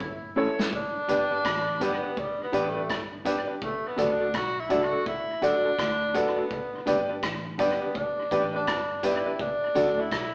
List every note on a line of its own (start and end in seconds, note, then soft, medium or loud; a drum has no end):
0.00 0.34 G1 medium
0.00 0.37 E4 loud
0.00 kick loud
0.22 0.29 A2 medium
0.35 0.47 E3 medium
0.35 0.47 A3 medium
0.35 0.49 C#4 medium
0.35 0.47 C#4 medium
0.35 0.59 E4 medium
0.35 0.50 E4 medium
0.35 0.60 A4 medium
0.35 0.50 A4 medium
0.35 0.60 C#5 loud
0.35 0.50 C#5 loud
0.58 0.65 A2 medium
0.58 0.66 C#4 medium
0.58 0.66 E4 medium
0.58 0.66 A4 medium
0.58 0.65 C#5 medium
0.58 snare medium
0.58 high conga medium
0.73 1.85 D4 loud
0.73 kick loud
0.73 low conga medium
0.94 1.02 G2 medium
0.94 1.01 D3 medium
1.08 1.42 G1 loud
1.08 1.19 G3 medium
1.08 1.19 B3 medium
1.08 1.22 D4 medium
1.08 1.20 D4 medium
1.08 1.32 G4 medium
1.08 1.22 G4 medium
1.08 1.22 B4 medium
1.08 1.32 B4 medium
1.08 1.32 D5 medium
1.08 1.23 D5 medium
1.08 kick medium
1.08 closed hi-hat medium
1.08 low conga medium
1.30 1.37 G2 medium
1.30 1.37 D3 medium
1.30 1.38 D4 soft
1.30 1.38 G4 medium
1.30 1.38 B4 medium
1.30 1.37 D5 medium
1.45 1.78 A1 loud
1.45 kick loud
1.45 cross-stick loud
1.66 1.74 G2 medium
1.66 1.74 D3 medium
1.80 2.02 G1 medium
1.80 1.91 G3 medium
1.80 1.92 B3 medium
1.80 2.20 B3 medium
1.80 1.92 D4 medium
1.80 1.94 D4 medium
1.80 2.04 G4 medium
1.80 1.94 G4 medium
1.80 2.02 B4 medium
1.80 1.95 B4 loud
1.80 2.02 D5 loud
1.80 1.95 D5 loud
1.80 kick medium
1.80 closed hi-hat medium
1.80 high conga soft
2.02 2.10 G2 medium
2.02 2.10 D3 medium
2.02 2.10 D4 medium
2.02 2.10 G4 medium
2.02 2.10 B4 medium
2.02 2.09 B4 soft
2.02 2.09 D5 medium
2.02 2.09 D5 soft
2.16 2.42 G3 medium
2.16 kick loud
2.16 low conga medium
2.38 2.46 G2 medium
2.38 2.46 D3 medium
2.43 2.65 B3 medium
2.52 2.87 A1 loud
2.52 2.64 G3 medium
2.52 2.64 B3 medium
2.52 2.64 D4 medium
2.52 2.66 D4 medium
2.52 2.76 G4 medium
2.52 2.66 G4 medium
2.52 2.67 B4 medium
2.52 2.77 B4 medium
2.52 2.67 D5 loud
2.52 2.77 D5 loud
2.52 kick medium
2.52 closed hi-hat medium
2.68 3.00 A3 medium
2.75 2.82 G2 medium
2.75 2.82 D3 medium
2.75 2.83 D4 medium
2.75 2.82 G4 medium
2.75 2.82 B4 medium
2.75 2.82 D5 medium
2.90 3.44 G1 loud
2.90 kick loud
2.90 cross-stick loud
3.12 3.19 G2 medium
3.12 3.18 D3 medium
3.25 3.36 G3 medium
3.25 3.36 B3 medium
3.25 3.38 D4 medium
3.25 3.37 D4 medium
3.25 3.49 G4 medium
3.25 3.39 G4 medium
3.25 3.49 B4 medium
3.25 3.39 B4 medium
3.25 3.49 D5 loud
3.25 3.39 D5 medium
3.25 kick loud
3.25 closed hi-hat medium
3.47 3.55 G2 medium
3.47 3.55 D3 medium
3.47 3.55 D4 medium
3.47 3.55 G4 medium
3.47 3.54 B4 medium
3.47 3.54 D5 medium
3.62 3.89 A3 loud
3.62 kick loud
3.62 low conga medium
3.84 3.91 D2 medium
3.84 3.91 A2 medium
3.84 4.13 B3 medium
3.96 4.31 D2 loud
3.96 4.09 F#3 medium
3.96 4.09 A3 medium
3.96 4.10 D4 medium
3.96 4.09 D4 medium
3.96 4.11 F#4 medium
3.96 4.21 F#4 medium
3.96 4.11 A4 medium
3.96 4.21 A4 medium
3.96 4.11 D5 loud
3.96 4.21 D5 loud
3.96 kick medium
3.96 closed hi-hat medium
3.96 low conga medium
4.12 4.37 D4 medium
4.19 4.27 D2 medium
4.19 4.27 A2 medium
4.19 4.27 D4 medium
4.19 4.27 F#4 medium
4.19 4.27 A4 medium
4.19 4.26 D5 medium
4.34 4.68 B1 loud
4.34 4.61 F#4 loud
4.34 kick loud
4.34 cross-stick loud
4.56 4.63 D2 medium
4.56 4.63 A2 medium
4.56 4.86 E4 medium
4.69 4.91 C#2 medium
4.69 4.81 F#3 medium
4.69 4.81 A3 medium
4.69 4.83 D4 medium
4.69 4.81 D4 medium
4.69 4.83 F#4 medium
4.69 4.93 F#4 medium
4.69 4.92 A4 medium
4.69 4.84 A4 medium
4.69 4.92 D5 loud
4.69 4.84 D5 medium
4.69 kick loud
4.69 closed hi-hat medium
4.69 high conga medium
4.84 5.07 F#4 loud
4.92 4.99 D2 medium
4.92 4.99 A2 medium
4.92 5.00 D4 soft
4.92 4.99 F#4 medium
4.92 4.99 A4 medium
4.92 4.98 A4 soft
4.92 4.99 D5 medium
4.92 4.98 D5 soft
5.06 5.46 E4 loud
5.06 kick loud
5.06 low conga medium
5.28 5.35 D2 medium
5.28 5.35 A2 medium
5.42 5.53 F#3 medium
5.42 5.53 A3 medium
5.42 5.55 D4 medium
5.42 5.53 D4 medium
5.42 6.18 D4 loud
5.42 5.65 F#4 loud
5.42 5.56 F#4 medium
5.42 5.56 A4 medium
5.42 5.66 A4 medium
5.42 5.56 D5 medium
5.42 5.66 D5 loud
5.42 kick medium
5.42 closed hi-hat medium
5.64 5.72 D2 medium
5.64 5.72 A2 medium
5.64 5.72 D4 medium
5.64 5.71 F#4 medium
5.64 5.71 A4 medium
5.64 5.71 D5 medium
5.79 6.12 D2 loud
5.79 kick loud
5.79 cross-stick loud
6.01 6.08 D2 medium
6.01 6.08 A2 medium
6.14 6.25 F#3 medium
6.14 6.26 A3 medium
6.14 6.88 B3 medium
6.14 6.27 D4 medium
6.14 6.26 D4 medium
6.14 6.28 F#4 medium
6.14 6.38 F#4 medium
6.14 6.28 A4 medium
6.14 6.38 A4 medium
6.14 6.28 D5 medium
6.14 6.38 D5 loud
6.14 kick medium
6.14 closed hi-hat medium
6.36 6.44 D2 medium
6.36 6.44 A2 medium
6.36 6.44 D4 medium
6.36 6.44 F#4 medium
6.36 6.43 A4 medium
6.36 6.43 D5 medium
6.51 kick loud
6.51 low conga medium
6.73 6.80 G2 medium
6.73 6.80 D3 medium
6.86 7.20 G1 loud
6.86 6.98 G3 medium
6.86 6.98 B3 medium
6.86 6.99 D4 medium
6.86 6.98 D4 medium
6.86 7.00 G4 medium
6.86 7.10 G4 medium
6.86 7.00 B4 medium
6.86 7.10 B4 medium
6.86 7.00 D5 medium
6.86 7.10 D5 loud
6.86 kick medium
6.86 closed hi-hat medium
6.86 low conga medium
7.09 7.16 G2 medium
7.09 7.16 D3 medium
7.09 7.16 D4 medium
7.09 7.16 G4 medium
7.09 7.15 B4 medium
7.09 7.15 D5 medium
7.23 7.56 A1 loud
7.23 kick loud
7.23 cross-stick loud
7.45 7.52 G2 medium
7.45 7.52 D3 medium
7.58 7.80 G1 medium
7.58 7.70 G3 medium
7.58 7.70 B3 medium
7.58 7.98 B3 medium
7.58 7.72 D4 medium
7.58 7.70 D4 medium
7.58 7.72 G4 medium
7.58 7.82 G4 medium
7.58 7.72 B4 medium
7.58 7.81 B4 medium
7.58 7.73 D5 medium
7.58 7.81 D5 loud
7.58 kick loud
7.58 closed hi-hat medium
7.58 high conga medium
7.81 7.88 G2 medium
7.81 7.88 D3 medium
7.81 7.88 D4 medium
7.81 7.88 G4 medium
7.81 7.88 B4 medium
7.81 7.87 B4 soft
7.81 7.87 D5 medium
7.81 7.87 D5 soft
7.94 8.55 D4 medium
7.94 kick loud
7.94 low conga medium
8.18 8.24 G2 medium
8.18 8.24 D3 medium
8.31 8.65 A1 loud
8.31 8.42 G3 medium
8.31 8.42 B3 medium
8.31 8.44 D4 medium
8.31 8.43 D4 medium
8.31 8.54 G4 medium
8.31 8.45 G4 medium
8.31 8.55 B4 medium
8.31 8.45 B4 loud
8.31 8.55 D5 loud
8.31 8.45 D5 medium
8.31 kick medium
8.31 closed hi-hat medium
8.54 8.61 G2 medium
8.54 8.60 D3 medium
8.54 8.61 D4 medium
8.54 9.07 D4 medium
8.54 8.60 G4 medium
8.54 8.60 B4 medium
8.54 8.60 D5 medium
8.67 9.22 G1 medium
8.67 kick loud
8.67 cross-stick loud
8.90 8.96 G2 medium
8.90 8.96 D3 medium
9.03 9.14 G3 medium
9.03 9.14 B3 medium
9.03 9.16 D4 medium
9.03 9.14 D4 medium
9.03 9.42 E4 medium
9.03 9.26 G4 medium
9.03 9.17 G4 medium
9.03 9.27 B4 medium
9.03 9.17 B4 medium
9.03 9.27 D5 loud
9.03 9.17 D5 medium
9.03 kick medium
9.03 closed hi-hat medium
9.25 9.33 G2 medium
9.25 9.33 D3 medium
9.25 9.33 D4 medium
9.25 9.33 G4 medium
9.25 9.32 B4 medium
9.25 9.32 D5 medium
9.39 10.02 D4 medium
9.39 kick loud
9.39 low conga medium
9.61 9.68 D2 medium
9.61 9.68 A2 medium
9.75 10.09 D2 medium
9.75 9.86 F#3 medium
9.75 9.86 A3 medium
9.75 9.88 D4 medium
9.75 9.86 D4 medium
9.75 9.99 F#4 medium
9.75 9.89 F#4 medium
9.75 9.89 A4 medium
9.75 9.99 A4 medium
9.75 9.89 D5 loud
9.75 9.99 D5 loud
9.75 kick medium
9.75 closed hi-hat medium
9.75 low conga medium
9.98 10.05 D2 medium
9.98 10.05 A2 medium
9.98 10.05 D4 medium
9.98 10.34 E4 loud
9.98 10.05 F#4 medium
9.98 10.04 A4 medium
9.98 10.04 D5 medium
10.12 10.34 B1 medium
10.12 kick loud
10.12 cross-stick loud